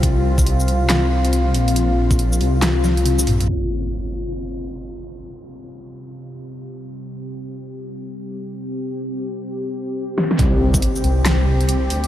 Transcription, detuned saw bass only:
0, 0, Header, 1, 2, 480
1, 0, Start_track
1, 0, Tempo, 431655
1, 37, Time_signature, 4, 2, 24, 8
1, 13425, End_track
2, 0, Start_track
2, 0, Title_t, "Detuned saw bass"
2, 0, Program_c, 0, 39
2, 34, Note_on_c, 0, 36, 96
2, 981, Note_off_c, 0, 36, 0
2, 996, Note_on_c, 0, 36, 97
2, 1702, Note_off_c, 0, 36, 0
2, 1717, Note_on_c, 0, 34, 95
2, 2662, Note_off_c, 0, 34, 0
2, 2678, Note_on_c, 0, 36, 102
2, 3143, Note_off_c, 0, 36, 0
2, 3156, Note_on_c, 0, 36, 98
2, 3622, Note_off_c, 0, 36, 0
2, 3636, Note_on_c, 0, 34, 96
2, 3861, Note_off_c, 0, 34, 0
2, 11555, Note_on_c, 0, 36, 93
2, 12021, Note_off_c, 0, 36, 0
2, 12277, Note_on_c, 0, 36, 100
2, 13222, Note_off_c, 0, 36, 0
2, 13237, Note_on_c, 0, 38, 99
2, 13425, Note_off_c, 0, 38, 0
2, 13425, End_track
0, 0, End_of_file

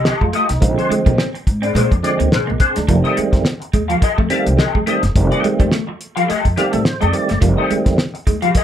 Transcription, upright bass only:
0, 0, Header, 1, 3, 480
1, 0, Start_track
1, 0, Tempo, 566572
1, 526, Time_signature, 4, 2, 24, 8
1, 7319, End_track
2, 0, Start_track
2, 0, Title_t, "Upright bass"
2, 0, Program_c, 0, 32
2, 184, Note_on_c, 0, 41, 81
2, 262, Note_off_c, 0, 41, 0
2, 421, Note_on_c, 0, 35, 91
2, 501, Note_off_c, 0, 35, 0
2, 525, Note_on_c, 0, 34, 107
2, 627, Note_off_c, 0, 34, 0
2, 900, Note_on_c, 0, 46, 103
2, 980, Note_off_c, 0, 46, 0
2, 1246, Note_on_c, 0, 44, 95
2, 1428, Note_off_c, 0, 44, 0
2, 1481, Note_on_c, 0, 46, 109
2, 1585, Note_off_c, 0, 46, 0
2, 1625, Note_on_c, 0, 41, 80
2, 1703, Note_off_c, 0, 41, 0
2, 1865, Note_on_c, 0, 38, 85
2, 1943, Note_off_c, 0, 38, 0
2, 1973, Note_on_c, 0, 34, 97
2, 2073, Note_off_c, 0, 34, 0
2, 2115, Note_on_c, 0, 34, 90
2, 2190, Note_off_c, 0, 34, 0
2, 2352, Note_on_c, 0, 38, 93
2, 2428, Note_off_c, 0, 38, 0
2, 2444, Note_on_c, 0, 29, 114
2, 2547, Note_off_c, 0, 29, 0
2, 2819, Note_on_c, 0, 41, 98
2, 2900, Note_off_c, 0, 41, 0
2, 3167, Note_on_c, 0, 39, 92
2, 3349, Note_off_c, 0, 39, 0
2, 3542, Note_on_c, 0, 41, 93
2, 3622, Note_off_c, 0, 41, 0
2, 3782, Note_on_c, 0, 36, 94
2, 3862, Note_off_c, 0, 36, 0
2, 4024, Note_on_c, 0, 41, 77
2, 4103, Note_off_c, 0, 41, 0
2, 4261, Note_on_c, 0, 30, 94
2, 4341, Note_off_c, 0, 30, 0
2, 4367, Note_on_c, 0, 29, 108
2, 4469, Note_off_c, 0, 29, 0
2, 4741, Note_on_c, 0, 41, 103
2, 4821, Note_off_c, 0, 41, 0
2, 5470, Note_on_c, 0, 41, 87
2, 5547, Note_off_c, 0, 41, 0
2, 5709, Note_on_c, 0, 45, 87
2, 5787, Note_off_c, 0, 45, 0
2, 5952, Note_on_c, 0, 41, 103
2, 6028, Note_off_c, 0, 41, 0
2, 6194, Note_on_c, 0, 30, 97
2, 6270, Note_off_c, 0, 30, 0
2, 6287, Note_on_c, 0, 29, 119
2, 6389, Note_off_c, 0, 29, 0
2, 6661, Note_on_c, 0, 41, 90
2, 6741, Note_off_c, 0, 41, 0
2, 7004, Note_on_c, 0, 39, 105
2, 7187, Note_off_c, 0, 39, 0
2, 7319, End_track
3, 0, Start_track
3, 0, Title_t, "Muted upright bass strokes"
3, 768, Note_on_c, 9, 29, 49
3, 852, Note_off_c, 9, 29, 0
3, 2695, Note_on_c, 9, 29, 46
3, 2779, Note_off_c, 9, 29, 0
3, 3406, Note_on_c, 9, 29, 47
3, 3491, Note_off_c, 9, 29, 0
3, 4610, Note_on_c, 9, 29, 52
3, 4695, Note_off_c, 9, 29, 0
3, 5338, Note_on_c, 9, 29, 45
3, 5423, Note_off_c, 9, 29, 0
3, 6534, Note_on_c, 9, 29, 51
3, 6618, Note_off_c, 9, 29, 0
3, 7245, Note_on_c, 9, 29, 44
3, 7319, Note_off_c, 9, 29, 0
3, 7319, End_track
0, 0, End_of_file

